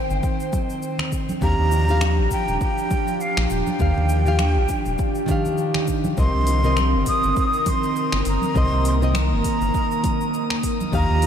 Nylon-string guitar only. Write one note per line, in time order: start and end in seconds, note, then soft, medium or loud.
1.41 1.84 D#3 medium
1.41 1.85 D4 medium
1.41 1.85 G4 medium
1.41 1.86 F5 medium
1.88 2.02 D#3 medium
1.88 2.02 D4 medium
1.88 2.03 G4 medium
1.88 2.03 F5 loud
3.79 4.22 D#3 medium
3.79 4.23 D4 medium
3.79 4.23 G4 medium
3.79 4.23 F5 medium
4.26 4.39 D#3 medium
4.26 4.40 D4 medium
4.26 4.40 G4 medium
4.26 4.41 F5 medium
5.26 6.13 D#3 medium
5.26 6.14 D4 medium
5.26 6.15 G4 medium
5.31 6.16 F5 loud
6.17 6.60 C3 medium
6.17 6.60 C4 medium
6.17 6.61 A#4 medium
6.17 6.61 D#5 medium
6.63 6.77 C3 medium
6.63 6.77 C4 medium
6.63 6.78 A#4 medium
6.63 6.78 D#5 loud
8.54 8.97 C3 medium
8.54 8.98 C4 medium
8.54 8.98 A#4 medium
8.54 8.99 D#5 medium
9.01 9.15 C3 medium
9.01 9.15 C4 medium
9.01 9.16 A#4 medium
9.01 9.16 D#5 loud
10.92 11.27 D#3 medium
10.92 11.27 D4 medium
10.92 11.27 G4 medium
10.92 11.27 F5 medium